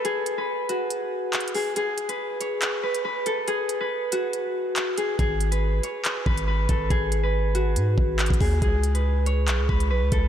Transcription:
Already playing: harp A4 B4 C#5
0.05 harp G#4, closed hi-hat
0.26 closed hi-hat
0.38 harp B4
0.69 harp F#4, closed hi-hat
0.90 closed hi-hat
1.33 clap, closed hi-hat
1.40 closed hi-hat
1.48 closed hi-hat
1.55 harp G#4, open hi-hat
1.76 harp G#4, closed hi-hat
1.98 closed hi-hat
2.09 harp B4, closed hi-hat
2.41 harp C#5, closed hi-hat
2.62 clap, closed hi-hat
2.83 harp B4
2.95 closed hi-hat
3.05 harp B4
3.26 harp A4, closed hi-hat
3.48 harp G#4, closed hi-hat
3.69 closed hi-hat
3.81 harp B4
4.12 harp F#4, closed hi-hat
4.33 closed hi-hat
4.76 clap, closed hi-hat
4.98 harp G#4, closed hi-hat
5.19 808-style bass G#1, harp G#4, kick, closed hi-hat
5.41 closed hi-hat
5.51 harp B4, closed hi-hat
5.83 harp C#5, closed hi-hat
6.05 clap, closed hi-hat
6.26 808-style bass G#1, harp B4, kick
6.37 closed hi-hat
6.47 harp B4
6.69 808-style bass G#1, harp A4, kick, closed hi-hat
6.90 808-style bass G#1, harp G#4, kick, closed hi-hat
7.12 closed hi-hat
7.23 harp B4
7.55 harp F#4, closed hi-hat
7.76 808-style bass G#2, closed hi-hat
7.98 808-style bass G#1, kick
8.19 clap, closed hi-hat
8.26 closed hi-hat
8.30 808-style bass G#1, kick, closed hi-hat
8.40 808-style bass D#2, harp G#4, kick, open hi-hat
8.62 808-style bass C#2, harp G#4, kick, closed hi-hat
8.83 closed hi-hat
8.94 harp B4, closed hi-hat
9.26 harp C#5, closed hi-hat
9.48 808-style bass B1, clap, closed hi-hat
9.59 808-style bass C#2
9.69 808-style bass C#2, harp B4, kick
9.80 closed hi-hat
9.90 808-style bass B1, harp B4
10.02 808-style bass C#2
10.12 808-style bass C#2, harp A4, kick, closed hi-hat

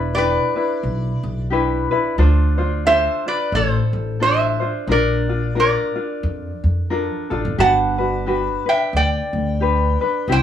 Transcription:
Already playing: upright bass E1, ukulele D4 E4 B4, resonator guitar played with a steel bar B4 D5
0.15 ukulele D4 E4 G4 B4, resonator guitar played with a steel bar B4 D5
0.56 ukulele D4 E4 B4
0.83 upright bass B1
1.23 upright bass B1
1.50 ukulele D4 E4 G4 B4
1.91 ukulele D4 E4 B4
2.18 upright bass D2, ukulele D4 F4 A4 C5
2.58 ukulele D4 F4 C5
2.86 ukulele D4 F4 A4 C5, resonator guitar played with a steel bar C5 E5
3.26 ukulele D4 F4, resonator guitar played with a steel bar B4 D5
3.52 upright bass A1, resonator guitar played with a steel bar C5
3.56 resonator guitar played with a steel bar A4
3.93 upright bass A1
4.20 ukulele D4 F4 A4 C5, resonator guitar played with a steel bar C5 E5
4.60 ukulele D4 F4 C5
4.87 upright bass A#1, ukulele D4 F4 A#4
4.91 resonator guitar played with a steel bar A#4 D5
5.29 ukulele D4 F4
5.55 ukulele D4 F4 A#4
5.60 resonator guitar played with a steel bar A#4 D5
5.95 ukulele D4 F4
6.23 upright bass F2
6.64 upright bass F2
6.90 ukulele D4 F4 A4 A#4
7.30 upright bass A1, ukulele D4 F4 A4
7.45 upright bass G1
7.58 upright bass G1, ukulele D4 F#4 G4 B4, resonator guitar played with a steel bar F#5 A5
7.98 ukulele D4 F#4 B4
8.26 ukulele D4 F#4 G4 B4
8.66 ukulele D4 B4, resonator guitar played with a steel bar E5 G5
8.93 upright bass D2, resonator guitar played with a steel bar D5 G5
9.33 upright bass D2
9.60 ukulele D4 G4 B4
10.01 ukulele D4 B4
10.28 upright bass C2, ukulele C4 E4 G4
10.32 resonator guitar played with a steel bar C5 F#5

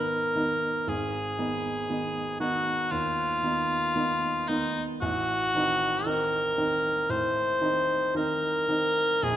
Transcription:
Already playing: grand piano G#1 D#3 B3 D#4, cor anglais A#4
0.35 grand piano D#3 B3 D#4
0.87 grand piano G#1, cor anglais G#4
1.38 grand piano D#3 B3 D#4
1.89 grand piano D#3 B3 D#4
2.40 grand piano D#3 B3 D#4, cor anglais F#4
2.91 grand piano D#2, cor anglais F4
3.43 grand piano D#3 B3 D#4
3.95 grand piano D#3 B3 D#4
4.48 grand piano D#3 B3 D#4, cor anglais D#4
5.01 grand piano A1, cor anglais F#4
5.55 grand piano D#3 C4 D#4
6.06 grand piano D#3 C4 D#4, cor anglais A#4
6.57 grand piano D#3 C4 D#4
7.10 grand piano A2, cor anglais C5
7.61 grand piano D#3 C4 D#4
8.14 grand piano D#3 C4 D#4, cor anglais A#4
8.68 grand piano D#3 C4 D#4
9.23 grand piano A#1, cor anglais G#4

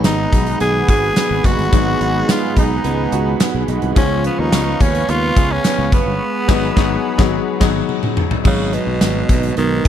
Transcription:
Already playing: overdriven electric guitar G#2 D#3 G#3 D#4, grand piano F#3 G#3 B3 D#4 F#4, clean electric guitar D#4, analog synth pad G#4 F#5 B5
0.04 fretless electric bass G#1, clean electric guitar B3, tenor saxophone D#4, snare, closed hi-hat, tambourine
0.32 fretless electric bass B1, clean electric guitar D#4, kick, closed hi-hat
0.47 closed hi-hat
0.60 fretless electric bass B1, overdriven electric guitar G#2 D#3 G#3, clean electric guitar B3, tenor saxophone G#4, closed hi-hat
0.88 fretless electric bass G#1, clean electric guitar F#4, tenor saxophone G#4, kick, closed hi-hat
1.16 overdriven electric guitar G#2 D#3 G#3, clean electric guitar B3, snare, closed hi-hat, tambourine
1.31 fretless electric bass G#1
1.44 fretless electric bass F#1, clean electric guitar D#4, tenor saxophone F#4, kick, closed hi-hat
1.59 fretless electric bass G1, closed hi-hat
1.72 fretless electric bass G#1, overdriven electric guitar G#2 D#3 G#3, grand piano F#3 G#3 B3 D#4 F#4, clean electric guitar B3, kick, closed hi-hat
2.01 fretless electric bass G#1, clean electric guitar D#4, closed hi-hat
2.28 overdriven electric guitar G#2 D#3 G#3, clean electric guitar B3, tenor saxophone F4, snare, closed hi-hat, tambourine
2.57 fretless electric bass B1, clean electric guitar D#4, tenor saxophone D#4, kick, closed hi-hat
2.84 fretless electric bass C#2, overdriven electric guitar G#2 D#3 G#3, clean electric guitar B3, closed hi-hat
3.12 fretless electric bass C#2, clean electric guitar F#4, closed hi-hat
3.40 overdriven electric guitar G#2 D#3 G#3, clean electric guitar B3, snare, closed hi-hat, tambourine
3.54 fretless electric bass B1
3.68 fretless electric bass B1, clean electric guitar D#4, closed hi-hat
3.82 fretless electric bass C2, closed hi-hat
3.95 fretless electric bass C#2, overdriven electric guitar C#3 G#3 C#4, grand piano F3 G#3 B3 C#4 F4, clean electric guitar F3, tenor saxophone C#4, analog synth pad B4 F5 C#6, kick, closed hi-hat
4.24 tenor saxophone B3, clean electric guitar C#4, closed hi-hat
4.39 fretless electric bass D#2, tenor saxophone D#4
4.52 fretless electric bass C#2, overdriven electric guitar C#3 G#3 C#4, clean electric guitar B3, snare, closed hi-hat, tambourine
4.80 fretless electric bass D#2, clean electric guitar C#4, tenor saxophone C#4, kick, closed hi-hat
4.95 closed hi-hat
5.08 fretless electric bass D#2, overdriven electric guitar C#3 G#3 C#4, clean electric guitar B3, tenor saxophone F4, closed hi-hat
5.36 fretless electric bass C#2, clean electric guitar G#4, kick, closed hi-hat
5.52 tenor saxophone C#4
5.64 overdriven electric guitar C#3 G#3 C#4, clean electric guitar B3, snare, closed hi-hat, tambourine
5.78 fretless electric bass C#2
5.92 fretless electric bass F#1, tenor saxophone B3, clean electric guitar C#4, kick, closed hi-hat
6.06 fretless electric bass G1
6.21 analog synth pad G#4 F#5 B5
6.48 fretless electric bass G#1, overdriven electric guitar G#2 D#3 G#3, grand piano F#3 G#3 B3 D#4 F#4, kick, snare, crash
6.75 fretless electric bass G#1, overdriven electric guitar G#2 D#3 G#3, grand piano F#3 G#3 B3 D#4 F#4, kick, snare
7.18 fretless electric bass G#1, overdriven electric guitar G#2 D#3 G#3, grand piano F#3 G#3 B3 D#4 F#4, kick, snare
7.60 fretless electric bass G#1, overdriven electric guitar G#2 D#3 G#3, grand piano F#3 G#3 B3 D#4 F#4, kick, snare, crash
7.89 high tom
8.03 mid tom
8.17 mid tom
8.31 floor tom
8.44 fretless electric bass G#1, overdriven electric guitar G#2 D#3, tenor saxophone C#3, grand piano F#3 G#3 B3 D#4 F#4, clean electric guitar F#3, kick, crash
8.48 overdriven electric guitar G#3
8.73 tenor saxophone B2, clean electric guitar D#4, closed hi-hat
8.87 fretless electric bass B1
9.01 fretless electric bass G#1, clean electric guitar B3, snare, closed hi-hat, tambourine
9.29 fretless electric bass B1, clean electric guitar D#4, kick, closed hi-hat
9.43 closed hi-hat
9.56 fretless electric bass B1, overdriven electric guitar G#2 D#3 G#3, tenor saxophone D#3, clean electric guitar B3, closed hi-hat
9.85 closed hi-hat

